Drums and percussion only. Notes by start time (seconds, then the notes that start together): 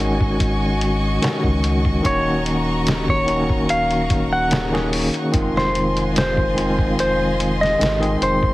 0.00 closed hi-hat
0.21 kick
0.40 kick, closed hi-hat
0.81 closed hi-hat
1.23 snare, closed hi-hat
1.44 kick
1.64 closed hi-hat
1.85 kick
2.05 kick, closed hi-hat
2.46 closed hi-hat
2.87 snare, closed hi-hat
3.08 kick
3.28 closed hi-hat
3.50 kick
3.69 closed hi-hat
3.91 closed hi-hat
4.10 kick, closed hi-hat
4.51 snare, closed hi-hat
4.75 snare
4.93 open hi-hat
5.14 closed hi-hat
5.34 kick, closed hi-hat
5.57 snare
5.75 closed hi-hat
5.97 closed hi-hat
6.16 snare, closed hi-hat
6.37 kick
6.58 closed hi-hat
6.79 kick
6.99 closed hi-hat
7.40 closed hi-hat
7.63 snare
7.81 snare, closed hi-hat
8.03 closed hi-hat
8.22 closed hi-hat
8.43 kick